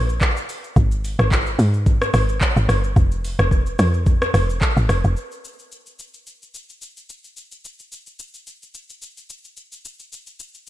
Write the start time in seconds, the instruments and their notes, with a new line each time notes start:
Already playing: log drum bass A#1
0.09 shaker
0.21 kick, clap, shaker
0.37 shaker
0.49 open hi-hat, shaker
0.64 shaker
0.76 log drum bass G#1, kick, shaker
0.92 shaker
1.05 open hi-hat, shaker
1.19 log drum bass G#1, cross-stick, shaker
1.31 kick, clap, shaker
1.46 shaker
1.59 log drum bass G#2, open hi-hat, shaker
1.74 shaker
1.86 kick, shaker
2.02 cross-stick, shaker
2.14 log drum bass G#1, cross-stick, open hi-hat, shaker
2.29 shaker
2.41 kick, clap, shaker
2.56 log drum bass G#1, shaker
2.69 log drum bass G1, cross-stick, open hi-hat, shaker
2.84 shaker
2.96 log drum bass F1, kick, shaker
3.12 shaker
3.25 open hi-hat, shaker
3.39 log drum bass F1, cross-stick, shaker
3.51 kick, shaker
3.66 shaker
3.79 log drum bass F2, cross-stick, open hi-hat, shaker
3.94 shaker
4.06 kick, shaker
4.22 cross-stick, shaker
4.34 log drum bass F1, cross-stick, open hi-hat, shaker
4.50 shaker
4.61 kick, clap, shaker
4.77 log drum bass A1, shaker
4.89 log drum bass F1, cross-stick, open hi-hat, shaker
5.04 log drum bass F1, shaker
5.17 shaker
5.32 shaker
5.45 shaker
5.59 shaker
5.72 shaker
5.86 shaker
5.99 shaker
6.14 shaker
6.27 shaker
6.42 shaker
6.54 shaker
6.70 shaker
6.82 shaker
6.97 shaker
7.09 shaker
7.24 shaker
7.37 shaker
7.52 shaker
7.65 shaker
7.79 shaker
7.92 shaker
8.07 shaker
8.19 shaker
8.34 shaker
8.47 shaker
8.62 shaker
8.74 shaker
8.90 shaker
9.02 shaker
9.17 shaker
9.30 shaker
9.45 shaker
9.57 shaker
9.72 shaker
9.85 shaker
10.00 shaker
10.12 shaker
10.27 shaker
10.40 shaker
10.54 shaker